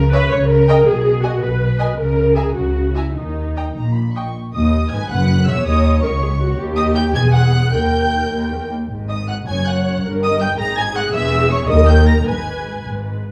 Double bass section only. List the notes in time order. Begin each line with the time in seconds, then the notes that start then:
Already playing: C#2
0.32 C#2
0.87 B1
1.42 B1
1.98 C#2
2.56 C#2
3.16 D#2
3.76 A#1
4.54 D#2
4.92 G#1
5.11 F#1
5.48 E1
5.66 D#2
6.03 C#2
6.58 D#2
7.14 E1
7.72 D#2
8.90 G#1
9.47 F#1
10.04 G1
10.59 G#1
11.13 E1
11.69 D#2
12.27 G#1
12.85 G#1